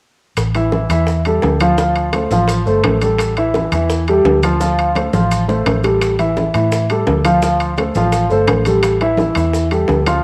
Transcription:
0.37 A1, high bongo, high conga, high timbale, maracas
0.55 E3 E4 E5, high conga, high timbale, maracas
0.72 E3 E4 E5, high bongo, high conga, low timbale, maracas
0.89 E2 E3 E4 E5, high conga, high timbale, maracas
1.07 high bongo, maracas
1.25 G3 G4 A4, high timbale, maracas
1.42 D2, high bongo, low bongo, high conga, low timbale, maracas
1.60 F3 F4 F5, high conga, high timbale, maracas
1.78 F3 F4 F5, high bongo, high conga, maracas
1.95 high conga, high timbale, maracas
2.13 A3 A4 C5, high bongo, high conga, high timbale, low timbale, maracas
2.31 A1 F3 F4 F5, high bongo, high conga, maracas
2.48 high bongo, high conga, high timbale, maracas
2.66 G1 A3 A4 C5, high bongo, high conga, maracas
2.84 A1, high bongo, low bongo, high conga, high timbale, low timbale, maracas
3.01 G3 G4 A4, high bongo, high timbale, maracas
3.19 high bongo, high conga, high timbale, maracas
3.37 E3 E4 E5, high timbale, maracas
3.54 E3 E4, high bongo, high conga, low timbale, maracas
3.72 E2 E3 E4 E5, high conga, high timbale, maracas
3.90 high bongo, maracas
4.08 G3 G4 A4, high timbale, maracas
4.25 D2, high bongo, low bongo, high conga, low timbale, maracas
4.43 F3 F4 F5, high conga, high timbale, maracas
4.60 F3 F4 F5, high bongo, high conga, maracas
4.78 high conga, high timbale, maracas
4.95 A3 A4 C5, high conga, high timbale, low timbale, maracas
5.13 A1 F3 F4 F5, low bongo, high conga, maracas
5.31 high conga, high timbale, maracas
5.48 A3 A4 C5, low bongo, maracas
5.66 A1, low bongo, high conga, high timbale, low timbale, maracas
5.84 G3 G4 A4, low bongo, high timbale, maracas
6.01 high bongo, high timbale, maracas
6.19 E3 E4 E5, high timbale, maracas
6.36 E3 E4 E5, high bongo, high conga, low timbale, maracas
6.54 A2 E3 E4 E5, high conga, high timbale, maracas
6.72 high bongo, high conga, maracas
6.89 G3 G4 A4, high conga, high timbale, maracas
7.07 D2, high bongo, low bongo, high conga, low timbale, maracas
7.25 F3 F4 F5, high conga, high timbale, maracas
7.42 F3 F4 F5, high bongo, high conga, maracas
7.60 high conga, high timbale, maracas
7.77 A3 A4 C5, high bongo, high conga, high timbale, low timbale, maracas
7.95 A1 F3 F4 F5, high bongo, high conga, maracas
8.12 high bongo, high conga, high timbale, maracas
8.30 G1 A3 A4 C5, high bongo, high conga, maracas
8.48 A1, high bongo, low bongo, high conga, high timbale, low timbale, maracas
8.65 G3 G4 A4, high bongo, high conga, high timbale, maracas
8.83 high bongo, high conga, high timbale, maracas
9.01 E3 E4 E5, high conga, high timbale, maracas
9.17 E3 E4 E5, high bongo, high conga, low timbale, maracas
9.35 E2 E3 E4 E5, high conga, high timbale, maracas
9.53 high bongo, maracas
9.71 G3 G4 A4, high conga, high timbale, maracas
9.88 D2, high bongo, low bongo, high conga, low timbale, maracas
10.06 F3 F4 F5, high conga, high timbale, maracas

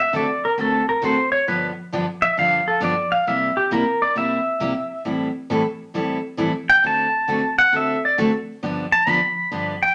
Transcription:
0.00 E5
0.13 D3 A3 C4 F#4 A4 D5
0.45 A#4
0.58 D3 A3 C4 F#4 A4
0.89 A#4
1.02 D3 A3 C4 F#4 A4 C5
1.32 C#5
1.47 G2 D3 F3 B3 D4 G4 B4
1.92 G2 D3 F3 B3 D4 G4
2.22 E5
2.37 G2 D3 F3 B3 D4 G4 F5
2.68 A4
2.80 G2 D3 F3 B3 D4 G4 D5
3.12 F5
3.27 C3 G3 A#3 E4 G4 E5
3.57 G4
3.71 C3 G3 A#3 E4 G4 A#4
4.02 D5
4.15 C3 G3 A#3 E4 G4 E5
4.60 C3 G3 A#3 E4 G4
5.05 A2 E3 G3 C4 E4 A4
5.50 A2 E3 G3 C4 E4 A4
5.94 A2 E3 G3 C4 E4 A4
6.37 A2 E3 G3 C4 E4 A4
6.70 G5
6.84 D3 A3 C4 F#4 A4 A5
7.28 D3 A3 C4 F#4 A4
7.59 F#5
7.72 D3 A3 C4 F#4 A4
7.76 E5
8.05 D5
8.18 D3 A3 C4 F#4 A4
8.63 G2 D3 F3 B3 D4 G4
8.92 A5
9.07 G2 D3 F3 B3 D4 G4 B5
9.52 G2 D3 F3 B3 D4 G4
9.83 G5

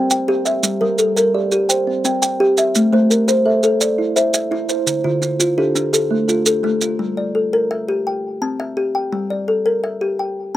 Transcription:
Already playing: C4 G5
0.10 G5, maracas
0.28 G4
0.45 E5, maracas
0.63 G3, maracas
0.81 G3 A#4
0.98 A4, maracas
1.16 A#4, maracas
1.34 G4 D5
1.52 G4, maracas
1.69 C5 G5, maracas
1.87 C4
2.05 C4 G5, maracas
2.22 G5, maracas
2.40 G4
2.57 E5, maracas
2.75 A3, maracas
2.93 A3 C5
3.10 A#4, maracas
3.28 C5, maracas
3.46 A4 E5
3.63 A4, maracas
3.81 D5 E5, maracas
3.98 E4
4.16 C5 E5, maracas
4.34 E5, maracas
4.51 E4
4.69 C5, maracas
4.87 D3, maracas
5.04 D3 F4
5.22 E4, maracas
5.40 F4, maracas
5.58 D4 G4 A4
5.75 D4, maracas
5.93 G4 A4, maracas
6.11 A3
6.28 F4 A4, maracas
6.46 A4, maracas
6.63 A3
6.81 F4, maracas
6.99 G3
7.17 D5
7.35 A4
7.53 A#4
7.71 E5
7.88 G4
8.07 G5
8.42 C4 A5
8.60 E5
8.77 G4
8.95 G5
9.12 G3
9.30 D5
9.48 A4
9.66 A#4
9.84 E5
10.01 G4
10.19 G5

